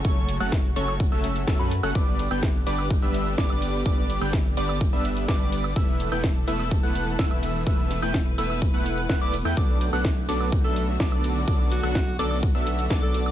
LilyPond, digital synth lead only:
\new Staff \with { instrumentName = "Digital synth lead" } { \time 4/4 \key b \minor \tempo 4 = 126 cis'''8. fis'''16 r8 cis'''8 r16 e'''8. e'''16 b''16 r16 fis'''16 | d'''8. g'''16 r8 d'''8 r16 e'''8. d'''4 | d'''8. g'''16 r8 d'''8 r16 e'''8. d'''4 | e'''8. g'''16 r8 e'''8 r16 fis'''8. e'''4 |
e'''8. g'''16 r8 e'''8 r16 fis'''8. fis'''16 d'''16 r16 g'''16 | d'''8. fis'''16 r8 d'''8 r16 e'''8. d'''4 | d'''8. fis'''16 r8 d'''8 r16 e'''8. d'''4 | }